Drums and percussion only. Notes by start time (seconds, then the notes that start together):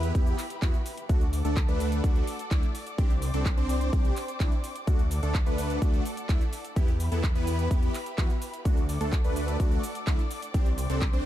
0.03 closed hi-hat, shaker
0.15 kick, closed hi-hat, shaker
0.27 closed hi-hat, shaker
0.38 clap, open hi-hat, shaker
0.50 closed hi-hat, shaker
0.62 kick, clap, closed hi-hat, shaker
0.74 closed hi-hat, shaker
0.86 open hi-hat, shaker
0.98 closed hi-hat, shaker
1.09 kick, closed hi-hat, shaker
1.21 closed hi-hat, shaker
1.33 open hi-hat, shaker
1.45 closed hi-hat, shaker
1.57 kick, clap, closed hi-hat, shaker
1.68 closed hi-hat, shaker
1.80 open hi-hat, shaker
1.92 closed hi-hat, shaker
2.04 kick, closed hi-hat, shaker
2.16 closed hi-hat, shaker
2.27 open hi-hat, shaker
2.39 closed hi-hat, shaker
2.51 kick, clap, closed hi-hat, shaker
2.63 closed hi-hat, shaker
2.75 open hi-hat, shaker
2.87 closed hi-hat, shaker
2.98 kick, closed hi-hat, shaker
3.10 closed hi-hat, shaker
3.22 open hi-hat, shaker
3.34 closed hi-hat, shaker
3.46 kick, clap, closed hi-hat, shaker
3.57 closed hi-hat, shaker
3.69 open hi-hat, shaker
3.81 closed hi-hat, shaker
3.93 kick, closed hi-hat, shaker
4.05 closed hi-hat, shaker
4.17 clap, open hi-hat, shaker
4.28 closed hi-hat, shaker
4.40 kick, clap, closed hi-hat, shaker
4.52 closed hi-hat, shaker
4.64 open hi-hat, shaker
4.76 closed hi-hat, shaker
4.87 kick, closed hi-hat, shaker
4.99 closed hi-hat, shaker
5.11 open hi-hat, shaker
5.23 closed hi-hat, shaker
5.35 kick, clap, closed hi-hat, shaker
5.46 closed hi-hat, shaker
5.58 open hi-hat, shaker
5.70 closed hi-hat, shaker
5.82 kick, closed hi-hat, shaker
5.94 closed hi-hat, shaker
6.06 open hi-hat, shaker
6.17 closed hi-hat, shaker
6.29 kick, clap, closed hi-hat, shaker
6.41 closed hi-hat, shaker
6.53 open hi-hat, shaker
6.65 closed hi-hat, shaker
6.76 kick, closed hi-hat, shaker
6.88 closed hi-hat, shaker
7.00 open hi-hat, shaker
7.12 closed hi-hat, shaker
7.24 kick, clap, closed hi-hat, shaker
7.35 closed hi-hat, shaker
7.47 open hi-hat, shaker
7.59 closed hi-hat, shaker
7.71 kick, closed hi-hat, shaker
7.83 closed hi-hat, shaker
7.94 clap, open hi-hat, shaker
8.06 closed hi-hat, shaker
8.18 kick, clap, closed hi-hat, shaker
8.30 closed hi-hat, shaker
8.42 open hi-hat, shaker
8.54 closed hi-hat, shaker
8.65 kick, closed hi-hat, shaker
8.77 closed hi-hat, shaker
8.89 open hi-hat, shaker
9.01 closed hi-hat, shaker
9.13 kick, clap, closed hi-hat, shaker
9.24 closed hi-hat, shaker
9.36 open hi-hat, shaker
9.48 closed hi-hat, shaker
9.60 kick, closed hi-hat, shaker
9.72 closed hi-hat, shaker
9.83 open hi-hat, shaker
9.95 closed hi-hat, shaker
10.07 kick, clap, closed hi-hat, shaker
10.19 closed hi-hat, shaker
10.31 open hi-hat, shaker
10.42 closed hi-hat, shaker
10.54 kick, closed hi-hat, shaker
10.66 closed hi-hat, shaker
10.78 open hi-hat, shaker
10.90 closed hi-hat, shaker
11.01 kick, clap, closed hi-hat, shaker
11.13 closed hi-hat, shaker